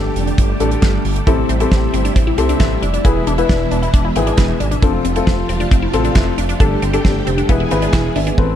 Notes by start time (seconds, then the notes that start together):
Already playing: D3 G3 A3 D4 G4 A4
0.16 F1, closed hi-hat
0.27 closed hi-hat
0.38 G1, kick, closed hi-hat
0.60 A1 D4 G4 A4, closed hi-hat
0.71 closed hi-hat
0.82 G1, kick, snare, clap
1.05 G1, open hi-hat
1.16 closed hi-hat
1.27 A1 C3 C4 E4 G4 A4, kick, closed hi-hat
1.49 A1 C4, closed hi-hat
1.60 C4 E4 G4 A4, closed hi-hat
1.71 A1 C4, kick, snare
1.94 G1 C4, closed hi-hat
2.05 D4, closed hi-hat
2.16 A1 C4, kick, closed hi-hat
2.27 E4
2.38 C2 C4 G4 A4, closed hi-hat
2.49 D4, closed hi-hat
2.60 A1 E4, kick, snare, clap
2.82 F1 D4, closed hi-hat
2.94 D4, closed hi-hat
3.05 E1 B2 E3 G#3 B3 E4 G#4, kick, closed hi-hat
3.27 E1 D4, closed hi-hat
3.38 B3 E4 B4, closed hi-hat
3.49 E1 D4, kick, snare
3.71 E1 D4, closed hi-hat
3.82 E4, closed hi-hat
3.94 E1 D4, kick, closed hi-hat
4.05 E4
4.16 G#1 B3 C4 E4 G#4, closed hi-hat
4.27 D4, closed hi-hat
4.38 E1 E4, kick, snare, clap
4.60 G#1 D4, closed hi-hat
4.71 D4, closed hi-hat
4.82 F1 C3 F3 A3 C4 D4 F4 A4, kick, closed hi-hat
5.05 F1 C4, closed hi-hat
5.16 C4 E4 F4 A4, closed hi-hat
5.27 F1 C4, kick, snare
5.49 E1 C4, closed hi-hat
5.60 D4, closed hi-hat
5.71 F1 C4, kick, closed hi-hat
5.82 E4
5.93 A1 C4 F4 A4, closed hi-hat
6.05 D4, closed hi-hat
6.16 F1 E4, kick, snare, clap
6.38 F1 D4, closed hi-hat
6.49 D4, closed hi-hat
6.60 G1 D3 G3 D4 G4 A4, kick, closed hi-hat
6.82 G1 C4, closed hi-hat
6.93 D4 G4 A4, closed hi-hat
7.05 G1 C4, kick, snare
7.27 F1 C4, closed hi-hat
7.38 D4, closed hi-hat
7.49 E1 E3 G#3 B3 E4 G#4 B4, kick, closed hi-hat
7.60 E4
7.71 G#1 C4 E4 G#4 B4 B5, closed hi-hat
7.82 D4, closed hi-hat
7.93 E1 E4 G#5, kick, snare, clap
8.16 G#1 D4 E5, open hi-hat
8.27 D4, closed hi-hat
8.38 A1 C4 A4 B4, kick